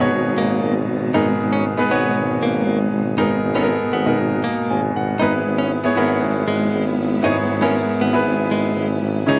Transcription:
Already playing: G#2 B2 G#3 B3 A#4 B4
0.00 B2 D#4 G#4 C#5
0.13 G#1
0.38 G#1 A#3
0.63 G#1
0.89 G#1
1.14 G#1 G#2 B3 D#4 G#4 A#4
1.40 G#1
1.53 C#4
1.77 B3 D#4 G#4 B4
1.89 G#1 B3 D#4 G#4 C#5
2.16 G#1
2.41 G#1 A#3
2.66 G#1
2.92 G#1
3.17 G#1 G#2 B3 D#4 G#4 A#4
3.43 G#1
3.54 B3 C#4 D#4 G#4 A4
3.63 A#4
3.93 G#1 B3
4.06 B2 D#4 G#4 A#4
4.19 G#1
4.44 A#3
4.70 G#1 G#5
4.95 G#1 F#5
5.19 G#1 G#2 G#3 B3 D#4 E4 G#4 B4
5.46 G#1
5.58 C#4
5.83 B3 E4 G#4 C#5
5.95 G#1 B3 E4 G#4 A#4
6.22 G#1
6.48 G#1 G#3
6.73 G#1
6.98 G#1
7.22 G#1 G#2 B3 D#4 E4 G#4 C#5
7.50 G#1
7.61 B3 C#4 E4 G#4 A#4
8.01 G#1 B3
8.13 B3 E4 G#4 B4
8.26 G#1
8.51 G#1 G#3
8.77 G#1
9.02 G#1
9.26 C#2 C#3 G#3 C#4 D#4 E4 G#4 C#5

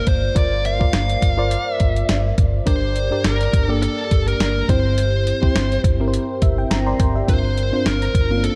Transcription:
Already playing: G2 A#3 F4 A#4 C5 D5 F5
0.07 G1 C5, kick, closed hi-hat
0.35 G1 G2 F4 A#4 C5 D5, kick, closed hi-hat
0.65 F5, closed hi-hat
0.80 F4 A#4 C5 D5, kick
0.93 G1, snare, closed hi-hat
1.09 closed hi-hat
1.22 G1, kick, closed hi-hat
1.37 F4 A#4 C5 D5
1.51 closed hi-hat
1.74 E5
1.80 G1, kick, closed hi-hat
1.96 closed hi-hat
2.09 G1, snare, closed hi-hat
2.38 G1, kick, closed hi-hat
2.66 G1 G2 D4 G4 A#4 C5 D5, kick, closed hi-hat
2.96 closed hi-hat
3.11 D4 G4 A#4 D5
3.24 G1 A#4, snare, closed hi-hat
3.41 closed hi-hat
3.53 G1, kick, closed hi-hat
3.68 A#3 D4 G4 A4 D5
3.83 A4, closed hi-hat
4.11 G1, kick, closed hi-hat
4.28 A#4, closed hi-hat
4.40 G1, snare, closed hi-hat
4.69 G1 G2 C4 E4 G4 C5, kick, closed hi-hat
4.98 closed hi-hat
5.27 closed hi-hat
5.42 C4 E4 G4 C5, kick
5.55 G1, snare, closed hi-hat
5.72 closed hi-hat
5.84 G1, kick, closed hi-hat
6.00 C4 E4 G4 A#4
6.08 C5
6.14 closed hi-hat
6.42 G1 E5, kick, closed hi-hat
6.58 G5
6.71 G1 A#5, snare, closed hi-hat
6.87 D5 A#5 C6
7.00 G1 A#4 G5, kick, closed hi-hat
7.16 G4 E5
7.28 G1 G2 C4 D4 F4 A#4 C5, kick, closed hi-hat
7.58 closed hi-hat
7.72 C4 D4 F4 C5
7.86 G1 A#4, snare, closed hi-hat
8.02 closed hi-hat
8.15 G1, kick, closed hi-hat
8.30 A#3 C4 C#4 F4
8.38 D4
8.44 A4, closed hi-hat

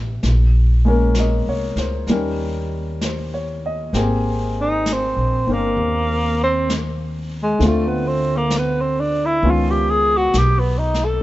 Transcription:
Already playing: A1 B2 E3 G3 D4 E4 G4
0.23 A#1, brush sweep, snare
0.85 G#3 A#3 C#4
0.89 A#4
1.14 brush sweep, snare, hi-hat pedal
1.19 D#5
1.47 C2 C#5
1.76 C#2 C5, snare
2.07 D#2 G3 C#4, brush sweep, snare
2.11 D#4 A#4
3.01 C5, brush sweep, snare, hi-hat pedal
3.34 C#5
3.66 D#5
3.93 G#1 A#3 C4 G4 G#4, brush sweep, snare
4.61 D#4
4.86 brush sweep, snare, hi-hat pedal
4.93 C4
5.16 A#1
5.47 G1 C4 D4 A#4
5.53 A#3
5.77 D#2, brush sweep
6.43 C4
6.69 brush sweep, snare, hi-hat pedal
7.43 G#3
7.59 D2 D3 A3 C4, brush sweep, snare
7.64 A3 F4
7.88 B3
8.07 C4
8.37 A#3
8.50 brush sweep, snare, hi-hat pedal
8.58 B3
8.81 C4
9.00 D4
9.26 E4
9.42 C#2 D#3 B3 C#4 F4, brush sweep
9.51 F4
9.71 G4
9.90 G#4
10.17 F#4
10.34 B1, brush sweep, snare, hi-hat pedal
10.38 G4
10.60 B3
10.79 D#4
10.94 snare
11.05 A4

